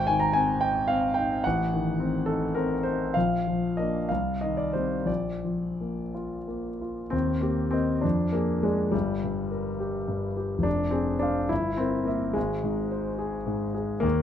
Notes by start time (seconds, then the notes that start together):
Already playing: G#1 G5
0.07 D#3 G#5
0.20 A#5
0.33 C4 G#5
0.61 D#4 G5
0.88 C4 F5
1.14 D#4 G5
1.44 A1 F#5
1.73 D#3
2.00 C4
2.26 D#4 A4
2.55 C4 A#4
2.83 D#4 C5
3.14 A#1 F5
3.47 F3
3.77 A#3 D4 D#5
4.09 C2 F5
4.41 D#3 D#5
4.57 D5
4.73 G3 C4 C5
5.06 A#1 D5
5.45 F3
5.81 A#3
6.14 F4
6.48 A#3
6.81 F4
7.10 D#2 C4
7.41 A#3 G4
7.71 C4 A#4 D#5
8.01 F2 D4
8.32 A#3 G#4
8.63 G#3 G#4 D5
8.92 G1 G3
9.24 G2
9.51 A#4
9.80 G4
10.08 G2
10.37 G4
10.59 F1
10.63 D4
10.90 C4 G#4
11.19 D4 C5 F5
11.49 G1 E4
11.77 C4 A#4
12.05 A#3 A#4 E5
12.33 G#1 G#3
12.64 G#2
12.91 C5
13.19 G#4
13.46 G#2
13.74 G#4
14.00 D#2 A#3